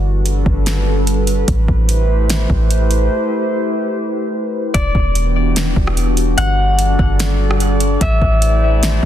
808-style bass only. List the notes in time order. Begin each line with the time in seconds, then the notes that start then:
Already playing: G1
0.46 G1
1.48 A1
1.68 A1
2.50 A1
4.75 E1
4.95 E1
5.76 E1
6.38 G1
6.99 G1
8.01 A1
8.22 A1